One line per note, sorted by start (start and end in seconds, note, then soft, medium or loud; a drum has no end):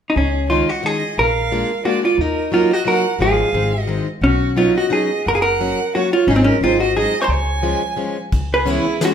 0.10 0.16 D#4 medium
0.15 0.61 C#2 medium
0.15 0.52 C#4 medium
0.15 0.47 G#4 medium
0.49 0.69 D#3 medium
0.49 0.69 G#3 medium
0.49 0.69 C#4 soft
0.49 0.69 D#4 medium
0.49 0.69 F4 medium
0.49 0.71 C#5 medium
0.69 0.86 F#4 medium
0.69 0.85 D#5 medium
0.82 1.03 D#3 medium
0.82 1.03 G#3 medium
0.82 1.02 C#4 medium
0.82 1.02 D#4 medium
0.82 1.19 G#4 medium
0.82 1.19 D#5 medium
1.18 1.62 A#1 medium
1.18 1.88 A#4 medium
1.18 1.82 F5 medium
1.52 1.71 G#3 medium
1.52 1.71 A#3 soft
1.52 1.70 D4 medium
1.52 1.70 F4 medium
1.85 2.04 G#3 medium
1.85 2.04 A#3 soft
1.85 2.04 D4 soft
1.85 2.04 F4 medium
1.85 2.04 F#4 medium
1.85 2.03 D5 medium
2.04 2.21 F4 medium
2.04 2.21 D5 medium
2.18 2.62 D#2 medium
2.18 2.53 D#4 medium
2.18 2.52 A#4 medium
2.52 2.71 F#3 medium
2.52 2.71 A#3 medium
2.52 2.71 D#4 soft
2.52 2.73 F4 medium
2.52 2.71 F#4 medium
2.52 2.75 A#4 medium
2.73 2.88 F#4 medium
2.73 2.86 D#5 medium
2.85 3.05 F#3 medium
2.85 3.05 A#3 medium
2.85 3.05 D#4 soft
2.85 3.05 F#4 medium
2.85 3.21 A#4 medium
2.85 3.18 F#5 medium
3.19 3.41 G#1 medium
3.19 3.48 F3 medium
3.19 3.48 G#3 soft
3.19 3.48 C#4 soft
3.19 3.48 F4 medium
3.19 3.81 G#4 medium
3.19 3.80 F5 medium
3.53 3.98 G#1 medium
3.53 3.73 D#3 medium
3.53 3.73 G#3 soft
3.53 3.73 C4 soft
3.53 3.73 D#4 medium
3.80 4.04 F#4 medium
3.80 4.04 D#5 medium
3.87 4.07 D#3 medium
3.87 4.07 G#3 soft
3.87 4.07 C4 soft
3.87 4.07 D#4 medium
4.21 4.67 B1 medium
4.21 4.59 C#4 medium
4.21 4.55 F#4 medium
4.57 4.76 F#3 medium
4.57 4.76 B3 soft
4.57 4.76 C#4 medium
4.57 4.76 D#4 medium
4.57 4.77 F4 medium
4.57 4.75 C#5 medium
4.77 4.93 F#4 medium
4.77 4.91 D#5 medium
4.90 5.10 F#3 soft
4.90 5.10 B3 soft
4.90 5.10 C#4 soft
4.90 5.10 D#4 medium
4.90 5.27 G#4 medium
4.90 5.24 D#5 medium
5.26 5.71 F#1 medium
5.26 5.35 A#4 medium
5.26 5.33 F#5 medium
5.34 5.42 G#4 medium
5.34 5.41 F5 medium
5.42 5.96 A#4 loud
5.42 5.91 F#5 medium
5.60 5.79 F#3 medium
5.60 5.79 A#3 medium
5.60 5.79 C#4 soft
5.60 5.79 F#4 medium
5.95 6.14 F#3 medium
5.95 6.14 A#3 soft
5.95 6.14 C#4 soft
5.95 6.13 F#4 medium
5.95 6.14 F#4 medium
5.95 6.12 C#5 medium
6.13 6.29 F4 medium
6.13 6.28 C#5 medium
6.27 6.49 G#1 medium
6.27 6.56 F#3 medium
6.27 6.56 G#3 medium
6.27 6.36 C#4 medium
6.27 6.56 C#4 medium
6.27 6.56 D#4 medium
6.27 6.35 G#4 medium
6.36 6.43 C4 medium
6.36 6.43 G#4 medium
6.44 6.63 C#4 medium
6.44 6.61 A#4 medium
6.60 7.05 G#1 medium
6.60 6.81 F#3 medium
6.60 6.81 G#3 medium
6.60 6.81 C4 soft
6.60 6.81 D#4 medium
6.60 6.80 F4 medium
6.60 6.80 C5 medium
6.80 6.96 F#4 medium
6.80 6.95 D#5 medium
6.96 7.14 F#3 medium
6.96 7.15 G#3 medium
6.96 7.15 C4 soft
6.96 7.15 D#4 medium
6.96 7.21 G#4 medium
6.96 7.21 D#5 medium
7.22 7.24 C5 medium
7.22 7.29 C5 medium
7.22 7.24 C#5 medium
7.22 7.24 G#5 medium
7.22 7.25 A#5 medium
7.26 7.73 C#2 medium
7.26 8.17 C#5 medium
7.26 7.30 G#5 medium
7.26 8.17 G#5 medium
7.63 7.82 F3 medium
7.63 7.82 G#3 medium
7.63 7.82 C#4 soft
7.63 7.82 F4 medium
7.96 8.16 F3 medium
7.96 8.16 G#3 medium
7.96 8.17 C#4 soft
7.96 8.16 F4 medium
8.32 8.77 C#2 medium
8.32 kick medium
8.32 ride soft
8.54 8.72 G#4 medium
8.54 8.70 B4 medium
8.66 8.86 E3 medium
8.66 8.85 G#3 soft
8.66 8.85 B3 medium
8.66 8.85 C#4 medium
8.66 ride soft
8.70 9.03 E4 medium
8.70 9.04 G#4 medium
9.01 9.14 E3 medium
9.01 9.14 G#3 medium
9.01 9.14 B3 soft
9.01 9.14 C#4 medium
9.01 9.13 C#4 medium
9.01 snare medium
9.01 ride soft
9.05 9.12 F#4 medium